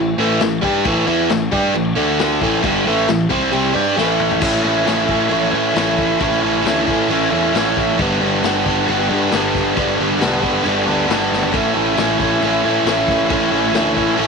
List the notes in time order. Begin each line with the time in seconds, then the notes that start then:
Already playing: A1 A2 E3
0.18 A1 A2 E3 A3
0.40 A1 A2 E3, snare, crash
0.62 G2 G3 D4 G4, kick
0.85 A1 A2 E3 A3, kick, crash
1.07 E2 E3 B3 E4
1.30 A1 A2 E3, snare, crash
1.51 G2 G3 D4 G4, kick
1.74 A1 A2 E3, crash
1.96 D2 D3 A3 D4
2.19 snare, crash
2.41 A1 A2 E3 A3, kick
2.62 G1 G2 D3 G3, kick, crash
2.85 A1 A2 E3 A3
3.08 A1 A2 E3, snare, crash
3.29 C2 C3 G3 C4, kick
3.51 C2 C3 G3 C4, crash
3.74 G2 G3 D4 G4
3.96 A1 A2 E3 A3, snare
4.20 mid tom
4.31 floor tom
4.39 A1 A2 E3 A3 C#4, kick, crash
4.44 E4
4.62 A1 C#4 E4
4.67 A3
4.85 A1 E3 A3 C#4, snare, crash
4.89 E4
5.07 A1 C#4 E4, kick
5.12 A3
5.29 A1 A2 E3 A3 C#4, crash
5.33 E4
5.51 A2 C#4 E4
5.56 A3
5.74 A1 E3 A3 C#4, snare, crash
5.79 E4
5.98 kick
6.18 A1 A2 E3 A3 C#4, kick, crash
6.23 E4
6.42 A1 C#4 E4
6.46 A3
6.62 D2 E3 A3 C#4, snare, crash
6.67 E4
6.86 A2 C#4 E4, kick
6.91 A3
7.08 A1 A2 E3 A3 C#4, crash
7.13 E4
7.31 E2 C#4 E4
7.35 A3
7.53 A1 E3 A3 C#4, snare, crash
7.58 E4
7.77 A1, kick
7.98 G1 G2 D3 G3 B3, kick, crash
8.02 D4
8.20 G1 B3 D4
8.25 G3
8.42 G1 D3 G3 B3, snare, crash
8.46 D4
8.64 G1 B3 D4, kick
8.69 G3
8.86 G1 G2 D3 G3, crash
8.90 B3 D4
9.09 G2 B3 D4
9.14 G3
9.31 G1 D3 G3 B3, snare, crash
9.36 D4
9.55 kick, snare
9.74 G1 G2 D3 G3, kick, crash
9.79 B3 D4
9.97 G1 B3 D4
10.02 G3
10.19 D3 G3 B3, snare, crash
10.23 B1 D4
10.41 G2 B3 D4, kick
10.46 G3
10.63 G1 G2 D3 G3 B3, crash
10.68 D4
10.86 D2 B3 D4
10.91 G3
11.07 G1 D3 G3 B3, snare, crash
11.12 D4
11.32 G1, snare
11.43 floor tom
11.52 A1 A2 E3 A3, kick, crash
11.56 C#4 E4
11.74 A1 C#4 E4
11.80 A3
11.96 A1 E3 A3 C#4, snare, crash
12.01 E4
12.20 A1 C#4 E4, kick
12.24 A3
12.41 A1 A2 E3 A3 C#4, crash
12.46 E4
12.64 A2 C#4 E4
12.69 A3
12.86 A1 E3 A3 C#4, snare, crash
12.91 E4
13.08 kick, snare
13.29 A1 A2 E3 A3 C#4, kick, crash
13.34 E4
13.52 A1 C#4 E4
13.57 A3
13.72 D2 E3 A3 C#4, snare, crash
13.77 E4
13.94 A2 C#4 E4, kick
13.99 A3
14.16 A1 A2 E3 A3 C#4, crash
14.21 E4